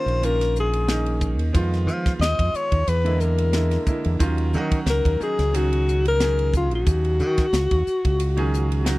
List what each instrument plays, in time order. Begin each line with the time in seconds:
Already playing: grand piano D#3 A#3 C#4 F4, alto saxophone C5
0.06 fingered electric bass A#1, ride
0.22 grand piano D#3 A#3 C#4 F4, alto saxophone A#4, hi-hat pedal, ride
0.41 snare, ride
0.55 hi-hat pedal
0.60 alto saxophone G#4
0.73 ride
0.89 grand piano D#3 A#3 C#4 D#4, snare, hi-hat pedal, ride
1.06 ride
1.21 kick, hi-hat pedal
1.39 fingered electric bass D#2, ride
1.53 fingered electric bass F2, grand piano D#3 G#3 B3 F4, kick, hi-hat pedal, ride
1.74 snare, ride
1.87 fingered electric bass F3, hi-hat pedal
2.06 kick, snare, ride
2.19 fingered electric bass D#2, alto saxophone D#5, snare, hi-hat pedal, ride
2.39 fingered electric bass F2, kick, ride
2.54 alto saxophone C#5, muted fingered electric bass stroke, hi-hat pedal
2.72 fingered electric bass D#2, kick, ride
2.88 fingered electric bass E2, alto saxophone B4, hi-hat pedal, ride
3.04 grand piano D3 G#3 A#3 E4, ride
3.20 alto saxophone A#4, hi-hat pedal
3.38 ride
3.53 grand piano D3 G#3 A#3 E4, snare, hi-hat pedal, ride
3.71 snare, ride
3.86 grand piano D3 G#3 A#3 E4, kick, hi-hat pedal
4.04 fingered electric bass E2, ride
4.19 fingered electric bass D#2, grand piano D#3 F#3 C#4 F4, kick, hi-hat pedal, ride
4.38 ride
4.53 grand piano D#3 F#3 C#4 F#4, fingered electric bass D#3, hi-hat pedal
4.71 kick, ride
4.86 fingered electric bass C#2, alto saxophone A#4, snare, hi-hat pedal, ride
5.05 fingered electric bass D#2, kick, ride
5.19 grand piano D#3 F#3 C#4 D#4, alto saxophone G#4, muted fingered electric bass stroke, hi-hat pedal
5.39 fingered electric bass C#2, snare, ride
5.53 grand piano D#3 F#3 C#4 G#4, alto saxophone F#4, hi-hat pedal, ride
5.73 ride
5.88 hi-hat pedal
6.05 alto saxophone A#4, ride
6.20 grand piano D#3 F#3 C#4 G#4, snare, hi-hat pedal, ride
6.39 ride
6.54 alto saxophone F4, kick, hi-hat pedal
6.71 fingered electric bass A#1, alto saxophone F#4, ride
6.87 fingered electric bass D#2, kick, hi-hat pedal, ride
7.04 ride
7.19 fingered electric bass D#3, hi-hat pedal
7.37 kick, snare, ride
7.53 fingered electric bass C#2, snare, hi-hat pedal, ride
7.71 fingered electric bass D#2, kick, ride
7.87 muted fingered electric bass stroke, hi-hat pedal
8.05 fingered electric bass C#2, kick, ride
8.20 hi-hat pedal, ride
8.37 grand piano D#3 F#3 C#4 G#4, ride
8.54 hi-hat pedal
8.72 ride
8.85 grand piano D#3 F#3 C#4 F#4, snare, hi-hat pedal, ride